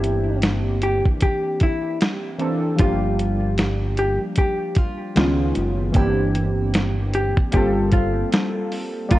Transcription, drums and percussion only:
0.04 closed hi-hat medium
0.42 snare loud
0.42 closed hi-hat medium
0.82 closed hi-hat medium
1.05 kick medium
1.21 kick medium
1.21 closed hi-hat medium
1.60 kick medium
1.60 closed hi-hat medium
2.01 snare loud
2.01 closed hi-hat medium
2.39 closed hi-hat medium
2.79 kick loud
2.79 closed hi-hat medium
3.19 closed hi-hat medium
3.58 snare loud
3.58 closed hi-hat medium
3.97 closed hi-hat medium
4.36 kick medium
4.36 closed hi-hat medium
4.75 kick loud
4.75 closed hi-hat medium
5.16 snare loud
5.16 closed hi-hat medium
5.55 closed hi-hat medium
5.94 kick loud
5.94 closed hi-hat medium
6.35 closed hi-hat medium
6.74 snare loud
6.74 closed hi-hat medium
7.13 closed hi-hat medium
7.37 kick medium
7.52 kick medium
7.52 closed hi-hat medium
7.92 kick medium
7.92 closed hi-hat medium
8.33 snare loud
8.33 closed hi-hat medium
8.72 open hi-hat soft
9.11 kick loud
9.11 closed hi-hat medium

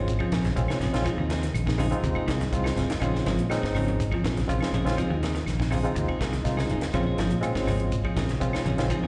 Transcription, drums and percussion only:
0.08 kick medium
0.08 closed hi-hat medium
0.08 shekere medium
0.19 kick medium
0.19 claves medium
0.32 kick medium
0.32 snare medium
0.32 closed hi-hat medium
0.32 high conga medium
0.32 shekere soft
0.45 snare soft
0.45 closed hi-hat medium
0.45 low conga medium
0.57 kick medium
0.57 closed hi-hat medium
0.57 high conga medium
0.57 shekere medium
0.68 snare medium
0.68 high conga medium
0.68 claves medium
0.81 snare soft
0.81 closed hi-hat soft
0.81 low conga medium
0.81 shekere soft
0.94 snare medium
0.94 closed hi-hat medium
1.05 kick medium
1.05 closed hi-hat medium
1.05 high conga soft
1.05 claves medium
1.05 shekere medium
1.30 snare medium
1.30 closed hi-hat medium
1.30 high conga medium
1.30 shekere soft
1.43 snare soft
1.43 closed hi-hat medium
1.54 closed hi-hat medium
1.54 high conga soft
1.54 claves medium
1.54 shekere medium
1.67 kick medium
1.67 snare medium
1.78 open hi-hat medium
1.78 high conga medium
1.78 low conga medium
1.78 claves medium
1.78 shekere soft
1.92 closed hi-hat soft
2.04 kick medium
2.04 closed hi-hat medium
2.04 high conga soft
2.04 shekere medium
2.15 kick medium
2.15 claves medium
2.28 kick medium
2.28 snare medium
2.28 closed hi-hat medium
2.28 high conga medium
2.28 shekere soft
2.41 snare soft
2.41 closed hi-hat medium
2.41 low conga medium
2.53 kick medium
2.53 closed hi-hat medium
2.53 high conga medium
2.53 shekere medium
2.64 snare medium
2.64 claves medium
2.77 snare soft
2.77 closed hi-hat medium
2.77 low conga medium
2.77 shekere soft
2.90 snare medium
2.90 closed hi-hat medium
3.00 kick medium
3.00 closed hi-hat medium
3.00 claves medium
3.00 shekere medium
3.15 snare soft
3.26 snare medium
3.26 closed hi-hat soft
3.26 high conga medium
3.26 shekere soft
3.39 closed hi-hat soft
3.50 snare soft
3.50 closed hi-hat medium
3.50 high conga soft
3.50 claves medium
3.50 shekere medium
3.63 kick medium
3.63 snare medium
3.75 open hi-hat medium
3.75 high conga medium
3.75 low conga medium
3.75 claves medium
3.75 shekere soft
3.88 closed hi-hat soft
4.00 kick medium
4.00 closed hi-hat medium
4.00 shekere medium
4.12 kick medium
4.12 claves medium
4.25 kick medium
4.25 snare medium
4.25 closed hi-hat soft
4.25 high conga medium
4.25 shekere soft
4.37 snare soft
4.37 closed hi-hat medium
4.49 kick medium
4.49 closed hi-hat medium
4.49 high conga medium
4.49 shekere medium
4.61 snare medium
4.61 claves medium
4.74 closed hi-hat soft
4.74 low conga medium
4.74 shekere soft
4.87 snare medium
4.87 closed hi-hat medium
4.97 kick medium
4.97 closed hi-hat medium
4.97 high conga soft
4.97 claves soft
4.97 shekere medium
5.23 snare medium
5.23 closed hi-hat soft
5.23 high conga medium
5.23 shekere soft
5.36 snare soft
5.36 closed hi-hat medium
5.46 snare soft
5.46 closed hi-hat medium
5.46 high conga soft
5.46 claves medium
5.46 shekere medium
5.60 kick medium
5.60 snare medium
5.71 open hi-hat medium
5.71 high conga medium
5.71 low conga medium
5.71 claves medium
5.71 shekere soft
5.85 closed hi-hat soft
5.96 kick medium
5.96 closed hi-hat medium
5.96 shekere medium
6.08 kick medium
6.08 claves medium
6.21 kick medium
6.21 snare medium
6.21 closed hi-hat medium
6.21 high conga medium
6.21 shekere soft
6.33 snare soft
6.33 closed hi-hat medium
6.45 kick medium
6.45 snare soft
6.45 closed hi-hat medium
6.45 high conga medium
6.45 shekere medium
6.57 snare medium
6.57 claves medium
6.69 closed hi-hat soft
6.69 low conga medium
6.69 shekere soft
6.81 snare medium
6.81 closed hi-hat medium
6.94 kick medium
6.94 closed hi-hat medium
6.94 claves medium
6.94 shekere medium
7.18 snare medium
7.18 closed hi-hat soft
7.18 high conga medium
7.18 shekere soft
7.31 closed hi-hat soft
7.43 closed hi-hat medium
7.43 high conga soft
7.43 claves medium
7.43 shekere medium
7.55 kick medium
7.55 snare medium
7.67 open hi-hat medium
7.67 high conga medium
7.67 low conga medium
7.67 claves medium
7.67 shekere soft
7.80 closed hi-hat soft
7.92 kick medium
7.92 closed hi-hat medium
7.92 shekere medium
8.05 kick medium
8.05 claves medium
8.17 kick medium
8.17 snare medium
8.17 closed hi-hat medium
8.17 high conga medium
8.17 shekere soft
8.29 snare soft
8.29 closed hi-hat medium
8.41 kick medium
8.41 closed hi-hat medium
8.41 high conga medium
8.41 shekere medium
8.53 snare medium
8.53 claves medium
8.66 closed hi-hat soft
8.66 low conga medium
8.66 shekere soft
8.78 snare medium
8.78 closed hi-hat medium
8.90 kick medium
8.90 closed hi-hat medium
8.90 high conga soft
8.90 claves soft
8.90 shekere medium

